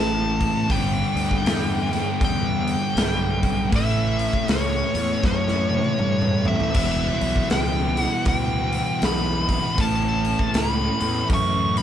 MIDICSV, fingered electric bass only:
0, 0, Header, 1, 2, 480
1, 0, Start_track
1, 0, Tempo, 756620
1, 445, Time_signature, 4, 2, 24, 8
1, 7501, End_track
2, 0, Start_track
2, 0, Title_t, "Fingered electric bass"
2, 0, Program_c, 0, 33
2, 0, Note_on_c, 0, 33, 90
2, 306, Note_off_c, 0, 33, 0
2, 442, Note_on_c, 0, 31, 98
2, 655, Note_off_c, 0, 31, 0
2, 728, Note_on_c, 0, 38, 97
2, 865, Note_off_c, 0, 38, 0
2, 916, Note_on_c, 0, 40, 88
2, 1263, Note_off_c, 0, 40, 0
2, 1401, Note_on_c, 0, 40, 101
2, 1746, Note_off_c, 0, 40, 0
2, 1873, Note_on_c, 0, 35, 96
2, 2362, Note_off_c, 0, 35, 0
2, 2362, Note_on_c, 0, 33, 98
2, 2707, Note_off_c, 0, 33, 0
2, 2840, Note_on_c, 0, 37, 94
2, 3053, Note_off_c, 0, 37, 0
2, 3134, Note_on_c, 0, 40, 88
2, 3268, Note_off_c, 0, 40, 0
2, 3319, Note_on_c, 0, 42, 98
2, 3665, Note_off_c, 0, 42, 0
2, 3797, Note_on_c, 0, 43, 96
2, 4144, Note_off_c, 0, 43, 0
2, 4280, Note_on_c, 0, 28, 96
2, 4493, Note_off_c, 0, 28, 0
2, 4572, Note_on_c, 0, 35, 89
2, 4707, Note_off_c, 0, 35, 0
2, 4760, Note_on_c, 0, 37, 96
2, 5106, Note_off_c, 0, 37, 0
2, 5239, Note_on_c, 0, 38, 98
2, 5586, Note_off_c, 0, 38, 0
2, 5720, Note_on_c, 0, 35, 92
2, 6067, Note_off_c, 0, 35, 0
2, 6203, Note_on_c, 0, 33, 91
2, 6549, Note_off_c, 0, 33, 0
2, 6687, Note_on_c, 0, 37, 89
2, 6899, Note_off_c, 0, 37, 0
2, 6982, Note_on_c, 0, 40, 83
2, 7114, Note_off_c, 0, 40, 0
2, 7165, Note_on_c, 0, 42, 98
2, 7501, Note_off_c, 0, 42, 0
2, 7501, End_track
0, 0, End_of_file